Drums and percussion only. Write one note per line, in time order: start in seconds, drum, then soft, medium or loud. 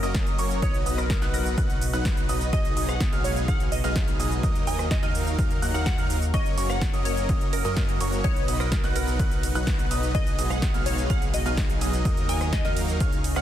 0.03 closed hi-hat soft
0.03 cabasa soft
0.15 kick loud
0.15 snare loud
0.15 closed hi-hat loud
0.15 cabasa soft
0.27 closed hi-hat soft
0.27 cabasa soft
0.39 open hi-hat loud
0.39 cabasa medium
0.50 closed hi-hat soft
0.50 cabasa soft
0.62 kick loud
0.62 closed hi-hat medium
0.62 cabasa soft
0.74 closed hi-hat soft
0.74 cabasa soft
0.86 open hi-hat loud
0.86 cabasa medium
0.98 cross-stick medium
0.98 closed hi-hat soft
0.98 cabasa soft
1.10 kick loud
1.10 snare loud
1.10 closed hi-hat loud
1.10 cabasa soft
1.22 snare soft
1.22 closed hi-hat soft
1.22 cabasa soft
1.34 open hi-hat loud
1.34 cabasa medium
1.46 closed hi-hat soft
1.46 cabasa soft
1.58 kick loud
1.58 closed hi-hat medium
1.58 cabasa soft
1.70 closed hi-hat soft
1.70 cabasa soft
1.81 open hi-hat loud
1.81 cabasa medium
1.93 closed hi-hat soft
1.93 cabasa soft
2.05 kick loud
2.05 snare loud
2.05 closed hi-hat loud
2.05 cabasa soft
2.17 closed hi-hat soft
2.17 cabasa soft
2.29 open hi-hat loud
2.29 cabasa medium
2.41 closed hi-hat soft
2.41 cabasa soft
2.53 kick loud
2.53 closed hi-hat medium
2.53 cabasa soft
2.65 closed hi-hat soft
2.65 cabasa soft
2.77 open hi-hat loud
2.77 cabasa medium
2.89 cross-stick medium
2.89 closed hi-hat soft
2.89 cabasa soft
3.00 kick loud
3.00 snare loud
3.00 closed hi-hat medium
3.00 cabasa soft
3.13 closed hi-hat soft
3.13 cabasa soft
3.24 open hi-hat loud
3.24 cabasa medium
3.36 closed hi-hat soft
3.36 cabasa soft
3.48 kick loud
3.48 closed hi-hat medium
3.48 cabasa soft
3.60 closed hi-hat soft
3.60 cabasa soft
3.72 open hi-hat loud
3.72 cabasa medium
3.84 closed hi-hat soft
3.84 cabasa soft
3.96 kick loud
3.96 snare loud
3.96 closed hi-hat medium
3.96 cabasa soft
4.08 closed hi-hat soft
4.08 cabasa soft
4.20 open hi-hat loud
4.20 cabasa medium
4.31 closed hi-hat soft
4.31 cabasa soft
4.43 kick loud
4.43 closed hi-hat medium
4.43 cabasa soft
4.55 closed hi-hat soft
4.55 cabasa soft
4.67 open hi-hat loud
4.67 cabasa medium
4.79 cross-stick medium
4.79 closed hi-hat soft
4.79 cabasa soft
4.91 kick loud
4.91 snare loud
4.91 closed hi-hat medium
4.91 cabasa soft
5.03 snare soft
5.03 closed hi-hat soft
5.03 cabasa soft
5.15 open hi-hat loud
5.15 cabasa medium
5.27 closed hi-hat soft
5.27 cabasa soft
5.39 kick loud
5.39 closed hi-hat medium
5.39 cabasa soft
5.50 closed hi-hat soft
5.50 cabasa soft
5.62 open hi-hat loud
5.62 cabasa medium
5.74 closed hi-hat soft
5.74 cabasa soft
5.86 kick loud
5.86 snare loud
5.86 closed hi-hat medium
5.86 cabasa soft
5.98 closed hi-hat soft
5.98 cabasa soft
6.10 open hi-hat loud
6.10 cabasa medium
6.22 closed hi-hat soft
6.22 cabasa soft
6.34 kick loud
6.34 closed hi-hat medium
6.34 ride medium
6.34 cabasa soft
6.46 closed hi-hat soft
6.46 cabasa soft
6.58 open hi-hat loud
6.58 ride medium
6.58 cabasa medium
6.70 cross-stick medium
6.70 closed hi-hat soft
6.70 cabasa soft
6.81 kick loud
6.81 snare loud
6.81 closed hi-hat medium
6.81 ride medium
6.81 cabasa soft
6.94 closed hi-hat soft
6.94 cabasa soft
7.05 open hi-hat medium
7.05 ride medium
7.05 cabasa medium
7.17 closed hi-hat soft
7.17 cabasa soft
7.29 kick loud
7.29 closed hi-hat medium
7.29 ride medium
7.29 cabasa soft
7.41 closed hi-hat soft
7.41 cabasa soft
7.53 open hi-hat loud
7.53 ride medium
7.53 cabasa medium
7.65 closed hi-hat soft
7.65 cabasa soft
7.77 kick loud
7.77 snare loud
7.77 closed hi-hat medium
7.77 ride medium
7.77 cabasa soft
7.89 closed hi-hat soft
7.89 cabasa soft
8.00 open hi-hat loud
8.00 ride medium
8.00 cabasa medium
8.12 closed hi-hat soft
8.12 cabasa soft
8.24 kick loud
8.24 closed hi-hat medium
8.24 ride medium
8.24 cabasa soft
8.36 closed hi-hat soft
8.36 cabasa soft
8.48 open hi-hat loud
8.48 ride medium
8.48 cabasa medium
8.60 cross-stick medium
8.60 closed hi-hat soft
8.60 cabasa soft
8.72 kick loud
8.72 snare loud
8.72 closed hi-hat loud
8.72 ride medium
8.72 cabasa soft
8.84 snare soft
8.84 closed hi-hat soft
8.84 cabasa soft
8.96 open hi-hat medium
8.96 ride medium
8.96 cabasa medium
9.08 closed hi-hat soft
9.08 cabasa soft
9.20 kick loud
9.20 closed hi-hat medium
9.20 ride medium
9.20 cabasa soft
9.31 closed hi-hat soft
9.31 cabasa soft
9.43 open hi-hat loud
9.43 ride medium
9.43 cabasa medium
9.55 closed hi-hat soft
9.55 cabasa soft
9.67 kick loud
9.67 snare loud
9.67 closed hi-hat medium
9.67 ride medium
9.67 cabasa soft
9.79 closed hi-hat soft
9.79 cabasa soft
9.91 open hi-hat medium
9.91 ride medium
9.91 cabasa medium
10.03 closed hi-hat soft
10.03 cabasa soft
10.15 kick loud
10.15 closed hi-hat loud
10.15 ride medium
10.15 cabasa soft
10.27 closed hi-hat soft
10.27 cabasa soft
10.39 open hi-hat loud
10.39 ride medium
10.39 cabasa medium
10.50 cross-stick medium
10.50 closed hi-hat soft
10.50 cabasa soft
10.62 kick loud
10.62 snare loud
10.62 closed hi-hat loud
10.62 ride medium
10.62 cabasa soft
10.74 closed hi-hat soft
10.74 cabasa soft
10.86 open hi-hat medium
10.86 ride medium
10.86 cabasa medium
10.98 closed hi-hat soft
10.98 cabasa soft
11.10 kick loud
11.10 closed hi-hat loud
11.10 ride medium
11.10 cabasa soft
11.22 closed hi-hat soft
11.22 cabasa soft
11.34 open hi-hat loud
11.34 ride medium
11.34 cabasa medium
11.46 closed hi-hat soft
11.46 cabasa soft
11.57 kick loud
11.57 snare loud
11.57 closed hi-hat loud
11.57 ride medium
11.57 cabasa soft
11.70 closed hi-hat soft
11.70 cabasa soft
11.81 open hi-hat medium
11.81 ride medium
11.81 cabasa medium
11.93 closed hi-hat soft
11.93 cabasa soft
12.05 kick loud
12.05 closed hi-hat loud
12.05 ride medium
12.05 cabasa soft
12.17 closed hi-hat soft
12.17 cabasa soft
12.29 open hi-hat loud
12.29 ride medium
12.29 cabasa medium
12.41 cross-stick medium
12.41 closed hi-hat soft
12.41 cabasa soft
12.53 kick loud
12.53 snare loud
12.53 closed hi-hat loud
12.53 ride medium
12.53 cabasa soft
12.65 snare soft
12.65 closed hi-hat soft
12.65 cabasa soft
12.77 open hi-hat medium
12.77 ride medium
12.77 cabasa medium
12.89 closed hi-hat soft
12.89 cabasa soft
13.00 kick loud
13.00 closed hi-hat loud
13.00 ride medium
13.00 cabasa soft
13.12 closed hi-hat soft
13.12 cabasa soft
13.24 open hi-hat loud
13.24 ride medium
13.24 cabasa medium
13.36 cross-stick medium
13.36 closed hi-hat soft
13.36 cabasa soft